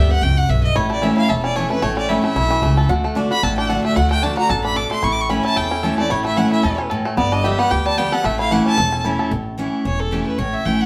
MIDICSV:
0, 0, Header, 1, 5, 480
1, 0, Start_track
1, 0, Tempo, 267618
1, 1351, Time_signature, 4, 2, 24, 8
1, 19473, End_track
2, 0, Start_track
2, 0, Title_t, "Fiddle"
2, 0, Program_c, 0, 110
2, 0, Note_on_c, 0, 76, 90
2, 195, Note_on_c, 0, 78, 115
2, 222, Note_off_c, 0, 76, 0
2, 409, Note_on_c, 0, 79, 103
2, 436, Note_off_c, 0, 78, 0
2, 672, Note_on_c, 0, 78, 114
2, 699, Note_off_c, 0, 79, 0
2, 887, Note_on_c, 0, 76, 100
2, 914, Note_off_c, 0, 78, 0
2, 1131, Note_off_c, 0, 76, 0
2, 1142, Note_on_c, 0, 75, 103
2, 1362, Note_on_c, 0, 73, 92
2, 1389, Note_off_c, 0, 75, 0
2, 1621, Note_off_c, 0, 73, 0
2, 1635, Note_on_c, 0, 74, 107
2, 1849, Note_on_c, 0, 76, 91
2, 1876, Note_off_c, 0, 74, 0
2, 2093, Note_off_c, 0, 76, 0
2, 2104, Note_on_c, 0, 77, 127
2, 2326, Note_on_c, 0, 76, 95
2, 2353, Note_off_c, 0, 77, 0
2, 2568, Note_off_c, 0, 76, 0
2, 2579, Note_on_c, 0, 74, 100
2, 2797, Note_on_c, 0, 73, 89
2, 2823, Note_off_c, 0, 74, 0
2, 3054, Note_off_c, 0, 73, 0
2, 3065, Note_on_c, 0, 71, 102
2, 3279, Note_on_c, 0, 73, 92
2, 3306, Note_off_c, 0, 71, 0
2, 3522, Note_off_c, 0, 73, 0
2, 3533, Note_on_c, 0, 74, 102
2, 3750, Note_on_c, 0, 76, 91
2, 3777, Note_off_c, 0, 74, 0
2, 4005, Note_off_c, 0, 76, 0
2, 4016, Note_on_c, 0, 76, 118
2, 5117, Note_off_c, 0, 76, 0
2, 5944, Note_on_c, 0, 83, 116
2, 6155, Note_on_c, 0, 81, 96
2, 6182, Note_off_c, 0, 83, 0
2, 6405, Note_off_c, 0, 81, 0
2, 6416, Note_on_c, 0, 79, 91
2, 6633, Note_on_c, 0, 78, 91
2, 6660, Note_off_c, 0, 79, 0
2, 6877, Note_off_c, 0, 78, 0
2, 6888, Note_on_c, 0, 76, 109
2, 7107, Note_on_c, 0, 78, 96
2, 7134, Note_off_c, 0, 76, 0
2, 7351, Note_off_c, 0, 78, 0
2, 7362, Note_on_c, 0, 79, 102
2, 7589, Note_on_c, 0, 81, 86
2, 7615, Note_off_c, 0, 79, 0
2, 7838, Note_off_c, 0, 81, 0
2, 7849, Note_on_c, 0, 82, 121
2, 8077, Note_on_c, 0, 81, 97
2, 8104, Note_off_c, 0, 82, 0
2, 8317, Note_off_c, 0, 81, 0
2, 8328, Note_on_c, 0, 83, 102
2, 8546, Note_on_c, 0, 86, 112
2, 8573, Note_off_c, 0, 83, 0
2, 8804, Note_off_c, 0, 86, 0
2, 8815, Note_on_c, 0, 84, 106
2, 9036, Note_on_c, 0, 85, 98
2, 9063, Note_off_c, 0, 84, 0
2, 9185, Note_on_c, 0, 86, 119
2, 9212, Note_off_c, 0, 85, 0
2, 9347, Note_on_c, 0, 85, 99
2, 9374, Note_off_c, 0, 86, 0
2, 9505, Note_on_c, 0, 83, 93
2, 9532, Note_off_c, 0, 85, 0
2, 9764, Note_off_c, 0, 83, 0
2, 9775, Note_on_c, 0, 81, 117
2, 9985, Note_on_c, 0, 79, 93
2, 10012, Note_off_c, 0, 81, 0
2, 10719, Note_off_c, 0, 79, 0
2, 10730, Note_on_c, 0, 74, 110
2, 10945, Note_on_c, 0, 73, 92
2, 10972, Note_off_c, 0, 74, 0
2, 11199, Note_off_c, 0, 73, 0
2, 11209, Note_on_c, 0, 76, 106
2, 11426, Note_on_c, 0, 78, 96
2, 11453, Note_off_c, 0, 76, 0
2, 11683, Note_off_c, 0, 78, 0
2, 11694, Note_on_c, 0, 76, 104
2, 12141, Note_off_c, 0, 76, 0
2, 12873, Note_on_c, 0, 74, 98
2, 13135, Note_on_c, 0, 75, 107
2, 13162, Note_off_c, 0, 74, 0
2, 13362, Note_on_c, 0, 76, 92
2, 13389, Note_off_c, 0, 75, 0
2, 13609, Note_on_c, 0, 78, 115
2, 13636, Note_off_c, 0, 76, 0
2, 13827, Note_on_c, 0, 79, 97
2, 13854, Note_off_c, 0, 78, 0
2, 14099, Note_on_c, 0, 81, 127
2, 14126, Note_off_c, 0, 79, 0
2, 14309, Note_on_c, 0, 79, 102
2, 14336, Note_off_c, 0, 81, 0
2, 14579, Note_on_c, 0, 78, 112
2, 14606, Note_off_c, 0, 79, 0
2, 14798, Note_on_c, 0, 76, 99
2, 14825, Note_off_c, 0, 78, 0
2, 15055, Note_off_c, 0, 76, 0
2, 15065, Note_on_c, 0, 77, 114
2, 15283, Note_on_c, 0, 78, 94
2, 15310, Note_off_c, 0, 77, 0
2, 15535, Note_off_c, 0, 78, 0
2, 15545, Note_on_c, 0, 81, 115
2, 16187, Note_off_c, 0, 81, 0
2, 17676, Note_on_c, 0, 73, 79
2, 17940, Note_on_c, 0, 69, 93
2, 17967, Note_off_c, 0, 73, 0
2, 18161, Note_on_c, 0, 67, 87
2, 18188, Note_off_c, 0, 69, 0
2, 18410, Note_off_c, 0, 67, 0
2, 18420, Note_on_c, 0, 71, 85
2, 18627, Note_on_c, 0, 73, 83
2, 18654, Note_off_c, 0, 71, 0
2, 18899, Note_on_c, 0, 76, 97
2, 18926, Note_off_c, 0, 73, 0
2, 19114, Note_on_c, 0, 79, 97
2, 19141, Note_off_c, 0, 76, 0
2, 19385, Note_on_c, 0, 78, 107
2, 19411, Note_off_c, 0, 79, 0
2, 19473, Note_off_c, 0, 78, 0
2, 19473, End_track
3, 0, Start_track
3, 0, Title_t, "Five-string banjo"
3, 0, Program_c, 1, 105
3, 1354, Note_on_c, 1, 64, 67
3, 1611, Note_on_c, 1, 57, 62
3, 1829, Note_on_c, 1, 61, 60
3, 2044, Note_off_c, 1, 64, 0
3, 2094, Note_on_c, 1, 64, 51
3, 2307, Note_on_c, 1, 69, 65
3, 2521, Note_off_c, 1, 61, 0
3, 2579, Note_on_c, 1, 61, 65
3, 2745, Note_off_c, 1, 64, 0
3, 2785, Note_off_c, 1, 69, 0
3, 2792, Note_on_c, 1, 69, 51
3, 3045, Note_off_c, 1, 57, 0
3, 3052, Note_on_c, 1, 57, 62
3, 3228, Note_off_c, 1, 61, 0
3, 3263, Note_off_c, 1, 57, 0
3, 3270, Note_on_c, 1, 57, 87
3, 3531, Note_on_c, 1, 61, 66
3, 3747, Note_on_c, 1, 64, 57
3, 4005, Note_off_c, 1, 57, 0
3, 4012, Note_on_c, 1, 57, 66
3, 4184, Note_off_c, 1, 61, 0
3, 4211, Note_off_c, 1, 64, 0
3, 4233, Note_on_c, 1, 64, 67
3, 4492, Note_on_c, 1, 52, 70
3, 4701, Note_off_c, 1, 57, 0
3, 4708, Note_on_c, 1, 57, 65
3, 4923, Note_off_c, 1, 64, 0
3, 4967, Note_off_c, 1, 69, 0
3, 4975, Note_on_c, 1, 69, 67
3, 5145, Note_off_c, 1, 52, 0
3, 5191, Note_on_c, 1, 66, 70
3, 5450, Note_off_c, 1, 57, 0
3, 5458, Note_on_c, 1, 57, 70
3, 5670, Note_on_c, 1, 62, 64
3, 5882, Note_off_c, 1, 66, 0
3, 5935, Note_on_c, 1, 66, 58
3, 6151, Note_off_c, 1, 69, 0
3, 6158, Note_on_c, 1, 69, 63
3, 6362, Note_off_c, 1, 62, 0
3, 6418, Note_on_c, 1, 62, 70
3, 6586, Note_off_c, 1, 66, 0
3, 6618, Note_off_c, 1, 69, 0
3, 6625, Note_on_c, 1, 69, 53
3, 6892, Note_off_c, 1, 57, 0
3, 6899, Note_on_c, 1, 57, 61
3, 7068, Note_off_c, 1, 62, 0
3, 7107, Note_on_c, 1, 66, 73
3, 7362, Note_off_c, 1, 57, 0
3, 7369, Note_on_c, 1, 57, 64
3, 7582, Note_on_c, 1, 62, 56
3, 7801, Note_off_c, 1, 66, 0
3, 7842, Note_on_c, 1, 66, 62
3, 8051, Note_off_c, 1, 69, 0
3, 8059, Note_on_c, 1, 69, 65
3, 8278, Note_off_c, 1, 62, 0
3, 8332, Note_on_c, 1, 62, 63
3, 8500, Note_off_c, 1, 66, 0
3, 8532, Note_off_c, 1, 69, 0
3, 8539, Note_on_c, 1, 69, 63
3, 8799, Note_off_c, 1, 57, 0
3, 8806, Note_on_c, 1, 57, 60
3, 8985, Note_off_c, 1, 62, 0
3, 9014, Note_on_c, 1, 64, 75
3, 9497, Note_on_c, 1, 61, 58
3, 9714, Note_off_c, 1, 64, 0
3, 9768, Note_on_c, 1, 64, 61
3, 9971, Note_off_c, 1, 69, 0
3, 9979, Note_on_c, 1, 69, 68
3, 10196, Note_off_c, 1, 61, 0
3, 10245, Note_on_c, 1, 61, 69
3, 10423, Note_off_c, 1, 64, 0
3, 10437, Note_off_c, 1, 69, 0
3, 10458, Note_on_c, 1, 69, 58
3, 10717, Note_off_c, 1, 57, 0
3, 10724, Note_on_c, 1, 57, 68
3, 10902, Note_off_c, 1, 61, 0
3, 10942, Note_on_c, 1, 64, 67
3, 11157, Note_off_c, 1, 69, 0
3, 11182, Note_off_c, 1, 57, 0
3, 11204, Note_on_c, 1, 57, 65
3, 11418, Note_on_c, 1, 61, 56
3, 11638, Note_off_c, 1, 64, 0
3, 11682, Note_on_c, 1, 64, 55
3, 11861, Note_off_c, 1, 57, 0
3, 11896, Note_on_c, 1, 69, 67
3, 12116, Note_off_c, 1, 61, 0
3, 12164, Note_on_c, 1, 61, 61
3, 12340, Note_off_c, 1, 64, 0
3, 12351, Note_off_c, 1, 69, 0
3, 12373, Note_on_c, 1, 69, 59
3, 12651, Note_on_c, 1, 57, 67
3, 12821, Note_off_c, 1, 61, 0
3, 12857, Note_off_c, 1, 57, 0
3, 12861, Note_off_c, 1, 69, 0
3, 12865, Note_on_c, 1, 59, 81
3, 13130, Note_on_c, 1, 62, 67
3, 13347, Note_on_c, 1, 67, 64
3, 13560, Note_off_c, 1, 59, 0
3, 13609, Note_on_c, 1, 59, 68
3, 13784, Note_off_c, 1, 62, 0
3, 13806, Note_off_c, 1, 67, 0
3, 13827, Note_on_c, 1, 67, 73
3, 14097, Note_on_c, 1, 55, 63
3, 14264, Note_off_c, 1, 59, 0
3, 14304, Note_on_c, 1, 59, 64
3, 14521, Note_off_c, 1, 67, 0
3, 14568, Note_on_c, 1, 69, 66
3, 14748, Note_off_c, 1, 55, 0
3, 14778, Note_off_c, 1, 59, 0
3, 14785, Note_on_c, 1, 57, 79
3, 14786, Note_off_c, 1, 69, 0
3, 15051, Note_on_c, 1, 64, 63
3, 15244, Note_off_c, 1, 57, 0
3, 15266, Note_on_c, 1, 57, 55
3, 15530, Note_on_c, 1, 61, 55
3, 15705, Note_off_c, 1, 64, 0
3, 15742, Note_on_c, 1, 69, 66
3, 15961, Note_off_c, 1, 57, 0
3, 15984, Note_off_c, 1, 61, 0
3, 16006, Note_on_c, 1, 61, 63
3, 16223, Note_on_c, 1, 64, 54
3, 16439, Note_off_c, 1, 69, 0
3, 16486, Note_on_c, 1, 69, 65
3, 16663, Note_off_c, 1, 61, 0
3, 16706, Note_off_c, 1, 69, 0
3, 16707, Note_off_c, 1, 64, 0
3, 19473, End_track
4, 0, Start_track
4, 0, Title_t, "Steel-string acoustic guitar"
4, 0, Program_c, 2, 25
4, 0, Note_on_c, 2, 43, 94
4, 162, Note_on_c, 2, 67, 64
4, 194, Note_on_c, 2, 59, 57
4, 347, Note_off_c, 2, 43, 0
4, 375, Note_off_c, 2, 67, 0
4, 384, Note_on_c, 2, 42, 97
4, 391, Note_off_c, 2, 59, 0
4, 846, Note_off_c, 2, 42, 0
4, 874, Note_on_c, 2, 43, 93
4, 1330, Note_off_c, 2, 43, 0
4, 1356, Note_on_c, 2, 45, 98
4, 1831, Note_on_c, 2, 52, 94
4, 1845, Note_on_c, 2, 57, 99
4, 1853, Note_on_c, 2, 61, 103
4, 1861, Note_on_c, 2, 64, 94
4, 2269, Note_off_c, 2, 45, 0
4, 2289, Note_off_c, 2, 52, 0
4, 2295, Note_off_c, 2, 57, 0
4, 2300, Note_off_c, 2, 61, 0
4, 2304, Note_off_c, 2, 64, 0
4, 2314, Note_on_c, 2, 40, 91
4, 2790, Note_on_c, 2, 52, 82
4, 2800, Note_on_c, 2, 57, 102
4, 2812, Note_on_c, 2, 61, 105
4, 2820, Note_on_c, 2, 64, 100
4, 3035, Note_off_c, 2, 64, 0
4, 3045, Note_off_c, 2, 52, 0
4, 3049, Note_off_c, 2, 57, 0
4, 3055, Note_off_c, 2, 61, 0
4, 3056, Note_on_c, 2, 64, 63
4, 3085, Note_on_c, 2, 61, 52
4, 3228, Note_off_c, 2, 40, 0
4, 3261, Note_off_c, 2, 64, 0
4, 3269, Note_on_c, 2, 45, 95
4, 3275, Note_off_c, 2, 61, 0
4, 3742, Note_on_c, 2, 52, 89
4, 3757, Note_on_c, 2, 57, 100
4, 3766, Note_on_c, 2, 61, 94
4, 3775, Note_on_c, 2, 64, 91
4, 3985, Note_off_c, 2, 64, 0
4, 4000, Note_off_c, 2, 52, 0
4, 4007, Note_on_c, 2, 64, 67
4, 4008, Note_off_c, 2, 57, 0
4, 4012, Note_off_c, 2, 61, 0
4, 4036, Note_on_c, 2, 61, 51
4, 4186, Note_off_c, 2, 45, 0
4, 4216, Note_off_c, 2, 64, 0
4, 4231, Note_off_c, 2, 61, 0
4, 4235, Note_on_c, 2, 47, 91
4, 4690, Note_off_c, 2, 47, 0
4, 4710, Note_on_c, 2, 49, 97
4, 5168, Note_off_c, 2, 49, 0
4, 5189, Note_on_c, 2, 50, 99
4, 5630, Note_off_c, 2, 50, 0
4, 5652, Note_on_c, 2, 50, 97
4, 5669, Note_on_c, 2, 57, 101
4, 5679, Note_on_c, 2, 62, 103
4, 5686, Note_on_c, 2, 66, 116
4, 5904, Note_off_c, 2, 66, 0
4, 5915, Note_off_c, 2, 50, 0
4, 5924, Note_off_c, 2, 57, 0
4, 5926, Note_on_c, 2, 66, 67
4, 5929, Note_off_c, 2, 62, 0
4, 5955, Note_on_c, 2, 62, 56
4, 6136, Note_off_c, 2, 66, 0
4, 6149, Note_on_c, 2, 45, 95
4, 6150, Note_off_c, 2, 62, 0
4, 6619, Note_on_c, 2, 50, 87
4, 6633, Note_on_c, 2, 57, 92
4, 6641, Note_on_c, 2, 62, 99
4, 6654, Note_on_c, 2, 66, 89
4, 7066, Note_off_c, 2, 45, 0
4, 7082, Note_off_c, 2, 50, 0
4, 7089, Note_off_c, 2, 57, 0
4, 7094, Note_off_c, 2, 62, 0
4, 7100, Note_off_c, 2, 66, 0
4, 7115, Note_on_c, 2, 50, 97
4, 7563, Note_off_c, 2, 50, 0
4, 7585, Note_on_c, 2, 50, 89
4, 7599, Note_on_c, 2, 57, 94
4, 7609, Note_on_c, 2, 62, 95
4, 7621, Note_on_c, 2, 66, 90
4, 8045, Note_off_c, 2, 50, 0
4, 8052, Note_off_c, 2, 57, 0
4, 8057, Note_off_c, 2, 62, 0
4, 8063, Note_off_c, 2, 66, 0
4, 8073, Note_on_c, 2, 42, 86
4, 8530, Note_off_c, 2, 42, 0
4, 8546, Note_on_c, 2, 47, 83
4, 9006, Note_off_c, 2, 47, 0
4, 9032, Note_on_c, 2, 45, 99
4, 9497, Note_on_c, 2, 52, 93
4, 9510, Note_on_c, 2, 57, 89
4, 9520, Note_on_c, 2, 61, 82
4, 9532, Note_on_c, 2, 64, 102
4, 9948, Note_off_c, 2, 45, 0
4, 9962, Note_off_c, 2, 52, 0
4, 9968, Note_off_c, 2, 57, 0
4, 9973, Note_off_c, 2, 61, 0
4, 9979, Note_off_c, 2, 64, 0
4, 9993, Note_on_c, 2, 40, 100
4, 10457, Note_on_c, 2, 52, 87
4, 10471, Note_on_c, 2, 57, 88
4, 10481, Note_on_c, 2, 61, 96
4, 10490, Note_on_c, 2, 64, 111
4, 10704, Note_off_c, 2, 64, 0
4, 10718, Note_off_c, 2, 52, 0
4, 10725, Note_off_c, 2, 57, 0
4, 10726, Note_on_c, 2, 64, 65
4, 10730, Note_off_c, 2, 61, 0
4, 10761, Note_on_c, 2, 61, 54
4, 10908, Note_off_c, 2, 40, 0
4, 10936, Note_off_c, 2, 64, 0
4, 10947, Note_on_c, 2, 45, 95
4, 10954, Note_off_c, 2, 61, 0
4, 11415, Note_on_c, 2, 52, 86
4, 11431, Note_on_c, 2, 57, 90
4, 11441, Note_on_c, 2, 61, 91
4, 11449, Note_on_c, 2, 64, 103
4, 11866, Note_off_c, 2, 45, 0
4, 11881, Note_off_c, 2, 52, 0
4, 11889, Note_off_c, 2, 57, 0
4, 11894, Note_off_c, 2, 61, 0
4, 11898, Note_off_c, 2, 64, 0
4, 11915, Note_on_c, 2, 47, 101
4, 12371, Note_off_c, 2, 47, 0
4, 12394, Note_on_c, 2, 45, 101
4, 12851, Note_off_c, 2, 45, 0
4, 12865, Note_on_c, 2, 43, 102
4, 13341, Note_on_c, 2, 50, 82
4, 13355, Note_on_c, 2, 55, 96
4, 13367, Note_on_c, 2, 59, 112
4, 13374, Note_on_c, 2, 67, 105
4, 13584, Note_off_c, 2, 67, 0
4, 13601, Note_off_c, 2, 50, 0
4, 13606, Note_on_c, 2, 67, 66
4, 13608, Note_off_c, 2, 55, 0
4, 13613, Note_off_c, 2, 59, 0
4, 13639, Note_on_c, 2, 59, 61
4, 13785, Note_off_c, 2, 43, 0
4, 13816, Note_off_c, 2, 67, 0
4, 13829, Note_on_c, 2, 50, 92
4, 13833, Note_off_c, 2, 59, 0
4, 14286, Note_off_c, 2, 50, 0
4, 14307, Note_on_c, 2, 50, 102
4, 14320, Note_on_c, 2, 55, 87
4, 14329, Note_on_c, 2, 59, 99
4, 14340, Note_on_c, 2, 67, 110
4, 14548, Note_off_c, 2, 67, 0
4, 14564, Note_off_c, 2, 50, 0
4, 14569, Note_on_c, 2, 67, 68
4, 14570, Note_off_c, 2, 55, 0
4, 14574, Note_off_c, 2, 59, 0
4, 14601, Note_on_c, 2, 59, 60
4, 14778, Note_off_c, 2, 67, 0
4, 14792, Note_on_c, 2, 45, 93
4, 14794, Note_off_c, 2, 59, 0
4, 15264, Note_on_c, 2, 52, 100
4, 15276, Note_on_c, 2, 57, 108
4, 15284, Note_on_c, 2, 61, 102
4, 15297, Note_on_c, 2, 64, 100
4, 15709, Note_off_c, 2, 45, 0
4, 15726, Note_off_c, 2, 52, 0
4, 15732, Note_off_c, 2, 57, 0
4, 15736, Note_off_c, 2, 61, 0
4, 15742, Note_off_c, 2, 64, 0
4, 15744, Note_on_c, 2, 40, 103
4, 16216, Note_on_c, 2, 52, 91
4, 16231, Note_on_c, 2, 57, 102
4, 16240, Note_on_c, 2, 61, 99
4, 16251, Note_on_c, 2, 64, 104
4, 16665, Note_off_c, 2, 40, 0
4, 16682, Note_off_c, 2, 52, 0
4, 16690, Note_off_c, 2, 57, 0
4, 16694, Note_off_c, 2, 61, 0
4, 16700, Note_off_c, 2, 64, 0
4, 16706, Note_on_c, 2, 45, 93
4, 17176, Note_on_c, 2, 52, 89
4, 17188, Note_on_c, 2, 57, 91
4, 17198, Note_on_c, 2, 61, 96
4, 17207, Note_on_c, 2, 64, 99
4, 17627, Note_off_c, 2, 45, 0
4, 17643, Note_off_c, 2, 52, 0
4, 17648, Note_off_c, 2, 57, 0
4, 17654, Note_off_c, 2, 61, 0
4, 17658, Note_off_c, 2, 64, 0
4, 17672, Note_on_c, 2, 40, 96
4, 18136, Note_on_c, 2, 52, 81
4, 18150, Note_on_c, 2, 57, 94
4, 18156, Note_on_c, 2, 61, 102
4, 18167, Note_on_c, 2, 64, 88
4, 18590, Note_off_c, 2, 40, 0
4, 18603, Note_off_c, 2, 52, 0
4, 18610, Note_off_c, 2, 57, 0
4, 18613, Note_off_c, 2, 61, 0
4, 18619, Note_off_c, 2, 64, 0
4, 18627, Note_on_c, 2, 45, 96
4, 19103, Note_on_c, 2, 52, 80
4, 19117, Note_on_c, 2, 57, 89
4, 19128, Note_on_c, 2, 61, 100
4, 19140, Note_on_c, 2, 64, 96
4, 19473, Note_off_c, 2, 45, 0
4, 19473, Note_off_c, 2, 52, 0
4, 19473, Note_off_c, 2, 57, 0
4, 19473, Note_off_c, 2, 61, 0
4, 19473, Note_off_c, 2, 64, 0
4, 19473, End_track
5, 0, Start_track
5, 0, Title_t, "Upright bass"
5, 0, Program_c, 3, 32
5, 0, Note_on_c, 3, 38, 84
5, 319, Note_off_c, 3, 38, 0
5, 391, Note_on_c, 3, 37, 86
5, 799, Note_off_c, 3, 37, 0
5, 878, Note_on_c, 3, 35, 79
5, 1282, Note_off_c, 3, 35, 0
5, 1354, Note_on_c, 3, 33, 98
5, 1971, Note_off_c, 3, 33, 0
5, 2319, Note_on_c, 3, 28, 83
5, 2934, Note_off_c, 3, 28, 0
5, 3269, Note_on_c, 3, 33, 98
5, 3887, Note_off_c, 3, 33, 0
5, 4224, Note_on_c, 3, 35, 84
5, 4634, Note_off_c, 3, 35, 0
5, 4697, Note_on_c, 3, 37, 83
5, 5110, Note_off_c, 3, 37, 0
5, 5180, Note_on_c, 3, 38, 100
5, 5801, Note_off_c, 3, 38, 0
5, 6146, Note_on_c, 3, 33, 94
5, 6766, Note_off_c, 3, 33, 0
5, 7104, Note_on_c, 3, 38, 98
5, 7724, Note_off_c, 3, 38, 0
5, 8064, Note_on_c, 3, 33, 92
5, 8684, Note_off_c, 3, 33, 0
5, 9021, Note_on_c, 3, 33, 92
5, 9642, Note_off_c, 3, 33, 0
5, 9992, Note_on_c, 3, 40, 84
5, 10610, Note_off_c, 3, 40, 0
5, 10940, Note_on_c, 3, 33, 96
5, 11561, Note_off_c, 3, 33, 0
5, 11908, Note_on_c, 3, 40, 84
5, 12527, Note_off_c, 3, 40, 0
5, 12869, Note_on_c, 3, 31, 98
5, 13488, Note_off_c, 3, 31, 0
5, 13825, Note_on_c, 3, 38, 88
5, 14445, Note_off_c, 3, 38, 0
5, 14786, Note_on_c, 3, 33, 97
5, 15406, Note_off_c, 3, 33, 0
5, 15741, Note_on_c, 3, 28, 84
5, 16363, Note_off_c, 3, 28, 0
5, 16702, Note_on_c, 3, 33, 93
5, 17324, Note_off_c, 3, 33, 0
5, 17667, Note_on_c, 3, 28, 83
5, 18288, Note_off_c, 3, 28, 0
5, 18624, Note_on_c, 3, 33, 92
5, 18937, Note_off_c, 3, 33, 0
5, 19109, Note_on_c, 3, 33, 82
5, 19473, Note_off_c, 3, 33, 0
5, 19473, End_track
0, 0, End_of_file